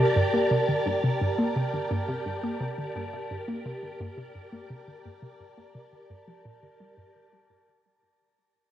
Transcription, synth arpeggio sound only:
0, 0, Header, 1, 2, 480
1, 0, Start_track
1, 0, Key_signature, -2, "minor"
1, 0, Tempo, 697674
1, 1072, Time_signature, 4, 2, 24, 8
1, 5993, End_track
2, 0, Start_track
2, 0, Title_t, "Synth arpeggio sound"
2, 0, Program_c, 0, 84
2, 111, Note_on_c, 0, 43, 76
2, 167, Note_off_c, 0, 43, 0
2, 231, Note_on_c, 0, 58, 92
2, 314, Note_off_c, 0, 58, 0
2, 351, Note_on_c, 0, 48, 92
2, 407, Note_off_c, 0, 48, 0
2, 472, Note_on_c, 0, 50, 69
2, 527, Note_off_c, 0, 50, 0
2, 591, Note_on_c, 0, 43, 94
2, 647, Note_off_c, 0, 43, 0
2, 713, Note_on_c, 0, 48, 90
2, 746, Note_off_c, 0, 48, 0
2, 834, Note_on_c, 0, 43, 78
2, 888, Note_off_c, 0, 43, 0
2, 952, Note_on_c, 0, 58, 93
2, 1035, Note_off_c, 0, 58, 0
2, 1073, Note_on_c, 0, 48, 94
2, 1128, Note_off_c, 0, 48, 0
2, 1194, Note_on_c, 0, 50, 67
2, 1248, Note_off_c, 0, 50, 0
2, 1312, Note_on_c, 0, 43, 87
2, 1367, Note_off_c, 0, 43, 0
2, 1434, Note_on_c, 0, 48, 98
2, 1466, Note_off_c, 0, 48, 0
2, 1553, Note_on_c, 0, 43, 76
2, 1608, Note_off_c, 0, 43, 0
2, 1675, Note_on_c, 0, 58, 95
2, 1756, Note_off_c, 0, 58, 0
2, 1793, Note_on_c, 0, 48, 91
2, 1848, Note_off_c, 0, 48, 0
2, 1915, Note_on_c, 0, 50, 67
2, 1969, Note_off_c, 0, 50, 0
2, 2036, Note_on_c, 0, 43, 96
2, 2089, Note_off_c, 0, 43, 0
2, 2155, Note_on_c, 0, 48, 93
2, 2187, Note_off_c, 0, 48, 0
2, 2275, Note_on_c, 0, 43, 68
2, 2329, Note_off_c, 0, 43, 0
2, 2394, Note_on_c, 0, 58, 98
2, 2476, Note_off_c, 0, 58, 0
2, 2515, Note_on_c, 0, 48, 100
2, 2569, Note_off_c, 0, 48, 0
2, 2634, Note_on_c, 0, 50, 62
2, 2688, Note_off_c, 0, 50, 0
2, 2754, Note_on_c, 0, 43, 99
2, 2808, Note_off_c, 0, 43, 0
2, 2872, Note_on_c, 0, 48, 93
2, 2905, Note_off_c, 0, 48, 0
2, 2992, Note_on_c, 0, 43, 74
2, 3047, Note_off_c, 0, 43, 0
2, 3113, Note_on_c, 0, 58, 87
2, 3195, Note_off_c, 0, 58, 0
2, 3234, Note_on_c, 0, 48, 91
2, 3288, Note_off_c, 0, 48, 0
2, 3355, Note_on_c, 0, 50, 73
2, 3409, Note_off_c, 0, 50, 0
2, 3476, Note_on_c, 0, 43, 92
2, 3529, Note_off_c, 0, 43, 0
2, 3593, Note_on_c, 0, 48, 94
2, 3625, Note_off_c, 0, 48, 0
2, 3715, Note_on_c, 0, 43, 69
2, 3768, Note_off_c, 0, 43, 0
2, 3835, Note_on_c, 0, 58, 91
2, 3916, Note_off_c, 0, 58, 0
2, 3955, Note_on_c, 0, 48, 92
2, 4008, Note_off_c, 0, 48, 0
2, 4076, Note_on_c, 0, 50, 70
2, 4129, Note_off_c, 0, 50, 0
2, 4197, Note_on_c, 0, 43, 86
2, 4277, Note_off_c, 0, 43, 0
2, 4318, Note_on_c, 0, 53, 94
2, 4370, Note_off_c, 0, 53, 0
2, 4439, Note_on_c, 0, 46, 96
2, 4518, Note_off_c, 0, 46, 0
2, 4559, Note_on_c, 0, 50, 63
2, 4589, Note_off_c, 0, 50, 0
2, 4679, Note_on_c, 0, 55, 96
2, 4758, Note_off_c, 0, 55, 0
2, 4797, Note_on_c, 0, 43, 73
2, 4850, Note_off_c, 0, 43, 0
2, 5993, End_track
0, 0, End_of_file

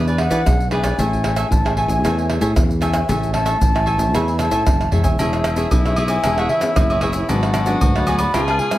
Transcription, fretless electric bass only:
0, 0, Header, 1, 2, 480
1, 0, Start_track
1, 0, Key_signature, 3, "major"
1, 0, Tempo, 525855
1, 903, Time_signature, 4, 2, 24, 8
1, 4743, Key_signature, 4, "major"
1, 8016, End_track
2, 0, Start_track
2, 0, Title_t, "Fretless electric bass"
2, 0, Program_c, 0, 35
2, 0, Note_on_c, 0, 40, 103
2, 244, Note_off_c, 0, 40, 0
2, 278, Note_on_c, 0, 52, 76
2, 390, Note_off_c, 0, 52, 0
2, 418, Note_on_c, 0, 35, 83
2, 828, Note_off_c, 0, 35, 0
2, 896, Note_on_c, 0, 33, 90
2, 1307, Note_off_c, 0, 33, 0
2, 1376, Note_on_c, 0, 33, 89
2, 1685, Note_off_c, 0, 33, 0
2, 1719, Note_on_c, 0, 33, 99
2, 1861, Note_off_c, 0, 33, 0
2, 1861, Note_on_c, 0, 40, 104
2, 2168, Note_off_c, 0, 40, 0
2, 2199, Note_on_c, 0, 45, 82
2, 2311, Note_off_c, 0, 45, 0
2, 2341, Note_on_c, 0, 40, 83
2, 2750, Note_off_c, 0, 40, 0
2, 2819, Note_on_c, 0, 33, 91
2, 3229, Note_off_c, 0, 33, 0
2, 3297, Note_on_c, 0, 33, 91
2, 3605, Note_off_c, 0, 33, 0
2, 3634, Note_on_c, 0, 33, 92
2, 3777, Note_off_c, 0, 33, 0
2, 3777, Note_on_c, 0, 40, 97
2, 4086, Note_off_c, 0, 40, 0
2, 4116, Note_on_c, 0, 45, 82
2, 4229, Note_off_c, 0, 45, 0
2, 4261, Note_on_c, 0, 30, 79
2, 4478, Note_off_c, 0, 30, 0
2, 4489, Note_on_c, 0, 28, 80
2, 4711, Note_off_c, 0, 28, 0
2, 4742, Note_on_c, 0, 28, 86
2, 5150, Note_off_c, 0, 28, 0
2, 5221, Note_on_c, 0, 35, 92
2, 5629, Note_off_c, 0, 35, 0
2, 5701, Note_on_c, 0, 28, 93
2, 5905, Note_off_c, 0, 28, 0
2, 6178, Note_on_c, 0, 30, 88
2, 6587, Note_off_c, 0, 30, 0
2, 6659, Note_on_c, 0, 32, 87
2, 7068, Note_off_c, 0, 32, 0
2, 7137, Note_on_c, 0, 38, 95
2, 7547, Note_off_c, 0, 38, 0
2, 7621, Note_on_c, 0, 37, 95
2, 7825, Note_off_c, 0, 37, 0
2, 8016, End_track
0, 0, End_of_file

